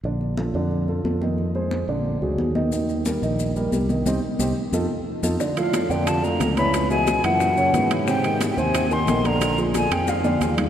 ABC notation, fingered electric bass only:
X:1
M:4/4
L:1/8
Q:1/4=179
K:Eblyd
V:1 name="Fingered electric bass" clef=bass
B,,,3 F,,3 F,,2- | F,,3 B,,,2 ^C,, E,,2- | E,,3 B,,,3 C,,2 | C,, z C,, z F,, z2 F,, |
z3 F,,3 _D,,2- | _D,,3 _G,,3 _A,,2- | _A,,3 E,,3 B,,,2- | B,,,3 F,,3 E,,2 |]